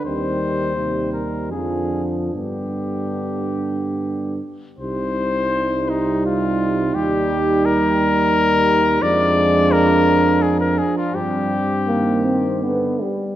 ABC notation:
X:1
M:3/4
L:1/16
Q:1/4=82
K:Cm
V:1 name="Cornet"
c6 B2 A3 z | G8- G2 z2 | c6 E2 F4 | G4 B8 |
d4 B4 A B A F | G8- G2 z2 |]
V:2 name="French horn section"
C2 C2 E2 E2 D4 | D8- D2 z2 | E12- | E12 |
D12 | C8 =B,2 z2 |]
V:3 name="Euphonium" clef=bass
G,4 G,4 F,4 | =B,8- B,2 z2 | G,12- | G,12 |
A,8- A,2 z2 | G,4 B,2 C2 =B,2 G,2 |]
V:4 name="Trombone" clef=bass
E,4 C,2 z2 D,4 | D,8- D,2 z2 | C,12 | G,12 |
F,12- | F,2 z2 E,4 D,2 z2 |]
V:5 name="Tuba" clef=bass
E,,8 F,,4 | G,,8- G,,2 z2 | C,,12 | E,,12 |
F,,8- F,,2 z2 | G,,8- G,,2 z2 |]